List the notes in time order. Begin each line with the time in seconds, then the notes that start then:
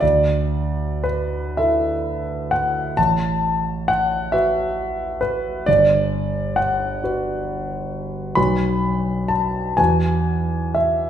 0.00 D2 D5
1.04 B4
1.57 E4 A4 E5
2.51 F#5
2.97 A1 A5
3.88 F#5
4.32 F#4 B4 E5
5.21 B4
5.66 G1 D5
6.56 F#5
7.04 F#4 B4
8.35 B1 F#4 B4 B5
9.28 A5
9.77 E2 F#4 B4 G#5
10.75 E5